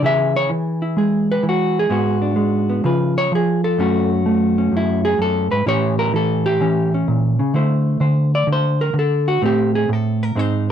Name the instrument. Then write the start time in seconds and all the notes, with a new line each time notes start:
hollow-body jazz guitar
0.02 C#3 E3 E4 G#4 E5
0.36 C#5
0.49 E3
0.82 E4
0.97 G#3 G#4
1.32 B4
1.43 E3
1.49 F#4
1.79 G#4
1.90 G#2 G#3 B3 F#4
2.22 D4
2.36 G#3
2.70 B3
2.84 C#3 F3 F4 B4
3.18 C#5
3.32 F3 G#4
3.64 A4
3.78 F#2 A3 C#4 F#4
4.26 A3
4.58 C#4
4.72 F#2
4.77 E4
5.05 G#4
5.18 F#2 A4
5.51 G#2 B4
5.66 A2 E3 C#4 G4 C#5
5.99 A#4
6.13 E3 A4
6.46 G4
6.61 E3 C#4
6.94 C#4
7.08 A#2
7.39 C#3
7.54 D3 A3 E4 C5
8.00 D3 C5
8.35 D5
8.47 D3
8.52 C5
8.81 A#4
8.94 D3
8.99 A4
9.28 F#4
9.42 A2 A3 C4 G4
9.75 G#4
9.89 A2
9.93 A4
10.23 A#4
10.36 G#2 G#3 C4 D#4 C5